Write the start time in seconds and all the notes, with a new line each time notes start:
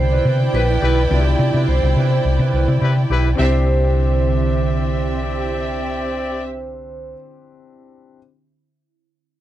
Already playing: C2 B2 D3 D4 E4 G4 C5 D5 G5
0.12 E4 B4 D5
0.25 C3 E4 B4 D5
0.42 muted clean electric guitar stroke
0.54 A#1 E4 G4 B4, muted clean electric guitar stroke
0.70 E4 B4 D5
0.82 B1 E4 G4 B4 D5
0.99 muted clean electric guitar stroke
1.10 C2 B2 D4 E4 F4 B4 C5 D5
1.19 G4
1.27 muted clean electric guitar stroke
1.39 C3, muted clean electric guitar stroke
1.54 C3 E4 B4 D5
1.68 C2 C5
1.83 C2
1.96 C3 E4 B4 D5
2.12 muted clean electric guitar stroke
2.25 C2, muted clean electric guitar stroke
2.39 C3 E4 B4 D5
2.53 C2 E4 B4 D5
2.68 C3, muted clean electric guitar stroke
2.81 C3 E4 G4 B4, muted clean electric guitar stroke
2.98 muted clean electric guitar stroke
3.10 B1 E4 G4 B4 D5
3.27 muted clean electric guitar stroke
3.35 C2 D3 C4 D4 E4 G4 D5 E5
3.41 G4 C5 D5